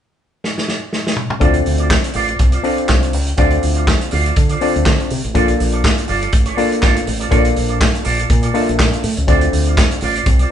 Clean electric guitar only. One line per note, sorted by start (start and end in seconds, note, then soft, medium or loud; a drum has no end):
1.40 1.58 F4 medium
1.40 1.54 C5 medium
1.40 1.53 D5 medium
1.54 muted clean electric guitar stroke soft
1.65 muted clean electric guitar stroke soft
1.79 1.88 F4 soft
1.79 1.89 C5 medium
1.79 1.90 D5 medium
1.90 muted clean electric guitar stroke soft
2.04 muted clean electric guitar stroke soft
2.14 2.28 F4 medium
2.14 2.28 C5 medium
2.14 2.27 D5 medium
2.28 2.37 F4 soft
2.28 2.38 C5 soft
2.28 2.39 D5 medium
2.39 muted clean electric guitar stroke soft
2.52 2.62 F4 medium
2.52 2.63 C5 medium
2.52 2.64 D5 medium
2.63 2.78 F4 medium
2.63 2.77 C5 medium
2.63 2.76 D5 medium
2.77 muted clean electric guitar stroke soft
2.88 muted clean electric guitar stroke soft
3.01 muted clean electric guitar stroke soft
3.26 muted clean electric guitar stroke medium
3.36 3.54 F4 medium
3.36 3.51 C5 medium
3.36 3.49 D5 medium
3.51 muted clean electric guitar stroke soft
3.61 muted clean electric guitar stroke soft
3.75 3.85 F4 soft
3.75 3.85 C5 soft
3.75 3.86 D5 soft
3.86 muted clean electric guitar stroke soft
4.00 muted clean electric guitar stroke soft
4.10 4.25 F4 medium
4.10 4.24 C5 medium
4.10 4.23 D5 medium
4.24 4.34 F4 soft
4.24 4.35 C5 medium
4.24 4.36 D5 medium
4.35 muted clean electric guitar stroke soft
4.49 4.59 F4 medium
4.49 4.60 C5 medium
4.49 4.61 D5 medium
4.61 4.75 F4 medium
4.61 4.74 C5 medium
4.61 4.73 D5 medium
4.74 muted clean electric guitar stroke medium
4.87 muted clean electric guitar stroke soft
4.99 muted clean electric guitar stroke soft
5.24 muted clean electric guitar stroke soft
5.34 5.51 F4 medium
5.34 5.48 A4 medium
5.34 5.47 D5 medium
5.48 muted clean electric guitar stroke soft
5.59 muted clean electric guitar stroke soft
5.72 5.82 F4 soft
5.72 5.83 A4 medium
5.72 5.83 D5 medium
5.83 muted clean electric guitar stroke soft
5.97 muted clean electric guitar stroke soft
6.07 6.22 F4 medium
6.07 6.21 A4 medium
6.07 6.20 D5 medium
6.21 6.31 F4 medium
6.21 6.32 A4 medium
6.21 6.33 D5 medium
6.32 muted clean electric guitar stroke soft
6.46 6.56 F4 medium
6.46 6.57 A4 medium
6.46 6.58 D5 medium
6.57 6.71 F4 medium
6.57 6.71 A4 medium
6.57 6.70 D5 medium
6.71 muted clean electric guitar stroke soft
6.81 6.99 F4 medium
6.81 6.96 A4 medium
6.81 6.94 D5 medium
6.95 muted clean electric guitar stroke soft
7.06 muted clean electric guitar stroke soft
7.19 7.28 F4 medium
7.19 7.29 A4 medium
7.19 7.31 D5 medium
7.30 7.48 F4 medium
7.30 7.44 A4 medium
7.30 7.43 D5 medium
7.44 muted clean electric guitar stroke soft
7.55 muted clean electric guitar stroke soft
7.69 7.78 F4 soft
7.69 7.79 A4 medium
7.69 7.80 D5 medium
7.80 muted clean electric guitar stroke soft
7.93 muted clean electric guitar stroke soft
8.03 8.18 F4 medium
8.03 8.17 A4 medium
8.03 8.16 D5 loud
8.17 8.28 F4 soft
8.17 8.28 A4 medium
8.17 8.29 D5 medium
8.29 muted clean electric guitar stroke soft
8.42 8.52 F4 medium
8.42 8.53 A4 medium
8.42 8.54 D5 medium
8.53 8.68 F4 medium
8.53 8.67 A4 medium
8.53 8.66 D5 medium
8.67 muted clean electric guitar stroke soft
8.78 muted clean electric guitar stroke soft
8.92 muted clean electric guitar stroke soft
9.17 muted clean electric guitar stroke soft
9.27 9.45 F4 medium
9.27 9.42 C5 medium
9.27 9.40 D5 medium
9.42 muted clean electric guitar stroke soft
9.53 muted clean electric guitar stroke soft
9.66 9.76 F4 soft
9.66 9.77 C5 medium
9.66 9.77 D5 medium
9.91 muted clean electric guitar stroke soft
10.02 10.16 F4 medium
10.02 10.15 C5 medium
10.02 10.14 D5 medium
10.15 10.25 F4 soft
10.15 10.26 C5 medium
10.15 10.26 D5 medium
10.26 muted clean electric guitar stroke soft
10.39 10.49 F4 medium
10.39 10.50 C5 medium
10.39 10.51 D5 medium